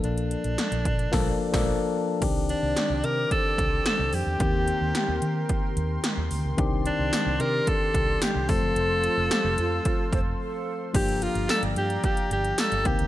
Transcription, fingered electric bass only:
X:1
M:4/4
L:1/16
Q:1/4=110
K:Gm
V:1 name="Fingered electric bass" clef=bass
B,,,3 B,,, z B,,, B,,2 B,,,2 z B,,,2 z3 | C,,3 C,, z C,, C,2 z2 C,,2 z C,, F,, =E,, | E,,3 E,, z E,, E,2 z2 E,,2 z E,, D,, ^C,, | C,,3 C,, z C,, C,2 z2 C,,2 z C,, F,,, ^F,,, |
F,,,3 F,,, z F,,, F,,2 z2 F,,,2 z4 | G,,,3 G,,, z G,,, G,,2 z2 G,,,2 z G,,, C,, ^C,, |]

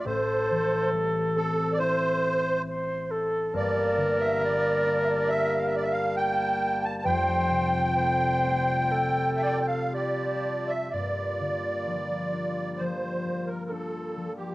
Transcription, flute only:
X:1
M:4/4
L:1/8
Q:1/4=67
K:Gdor
V:1 name="Flute"
A4- A z c A | B6- B z | c2 c2 A2 G2 | z8 |]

